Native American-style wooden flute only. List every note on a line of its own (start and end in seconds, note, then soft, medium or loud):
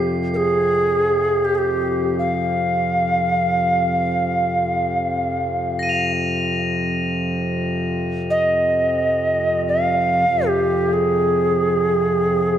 0.00 0.13 G4 medium
0.34 1.46 G#4 medium
0.34 0.36 A#4 medium
1.45 1.56 G4 medium
1.55 2.18 G4 medium
1.55 1.59 G#4 medium
2.19 6.10 F5 medium
8.30 9.62 D#5 medium
9.68 10.48 F5 medium
10.47 10.95 G4 medium
10.93 12.59 G#4 medium